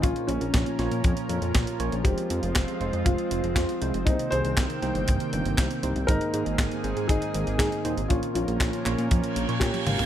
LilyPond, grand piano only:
\new Staff \with { instrumentName = "Grand piano" } { \time 4/4 \key bes \dorian \tempo 4 = 119 <des' f'>8 <bes des'>2 r4. | <c' g'>2 <c' f'>4 <c' f'>4 | <c' ees'>8 <aes' c''>2 r4. | <ees' bes'>2 <ees' aes'>4 <ees' aes'>4 |
<des' f'>8 <des' f'>2 r8 <des' g'>4 | }